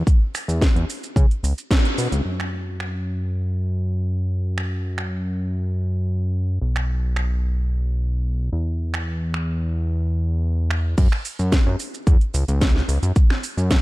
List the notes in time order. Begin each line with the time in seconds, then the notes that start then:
0.07 kick, closed hi-hat, shaker
0.35 finger snap, open hi-hat, shaker
0.48 E2, closed hi-hat, shaker
0.61 kick, snare, closed hi-hat, shaker
0.76 E2, closed hi-hat
0.90 open hi-hat, shaker
1.04 closed hi-hat, shaker
1.16 C#3, kick, closed hi-hat, shaker
1.31 closed hi-hat
1.43 C#2, open hi-hat, shaker
1.58 closed hi-hat, shaker
1.71 kick, snare, closed hi-hat, shaker
1.85 closed hi-hat
1.98 B2, open hi-hat, shaker
2.12 C#2, closed hi-hat, shaker
2.25 F#2
2.40 finger snap
2.80 finger snap
4.58 finger snap
4.98 finger snap
6.61 B1
6.76 finger snap
7.16 finger snap
8.53 E2
8.94 finger snap
9.34 finger snap
10.71 finger snap
10.98 F#2, kick, closed hi-hat, crash, shaker
11.12 finger snap
11.25 open hi-hat, shaker
11.39 F#2, shaker
11.52 finger snap, kick, snare, closed hi-hat, shaker
11.66 F#2
11.80 open hi-hat, shaker
11.94 shaker
12.07 E2, kick, closed hi-hat, shaker
12.21 closed hi-hat
12.34 C#2, open hi-hat, shaker
12.48 C#2, closed hi-hat, shaker
12.61 kick, snare, closed hi-hat, shaker
12.76 snare
12.88 C#2, open hi-hat, shaker
13.03 F#2, closed hi-hat, shaker
13.16 kick, closed hi-hat, shaker
13.30 finger snap, snare
13.44 open hi-hat, shaker
13.57 F#2, shaker
13.71 finger snap, kick, snare, closed hi-hat, shaker